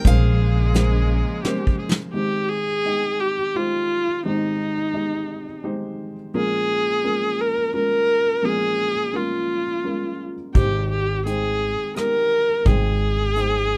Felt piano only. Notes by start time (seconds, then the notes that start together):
0.05 A#1 A#2 G#3 C#4 A#4 C5
0.74 G#3 C#4 A#4 C5
1.45 G#3 C#4 A#4 C5
2.14 G#1 G#2 G#3 D#4 G4 C5
2.85 G#3 D#4 D#5 G5
3.55 G#3 D#4 G4 C5
4.25 G#1 G#2 G#3 D#4 G4 C5
4.93 G#3 D#4 G4 D#5
5.63 G#3 D#4 G4 C5
6.34 A#1 A#2 G#3 C#4 F4 A#4
7.04 G#3 C#4 F4 A#4
7.73 G#3 C#4 F4 A#4
8.42 A#1 A#2 G#3 C#4 F4 A#4
9.13 G#3 C#4 F4 A#4
9.84 G#3 C#4 F4 A#4
10.55 G#1 G#2 G#3 D#4 G4 C5
11.25 G#3 D#4 C5 G5
11.96 G#3 D#4 G4 A#4
12.66 G#1 G#2 G#3 D#4 C5 G5
13.36 G#3 D#4 C5 G5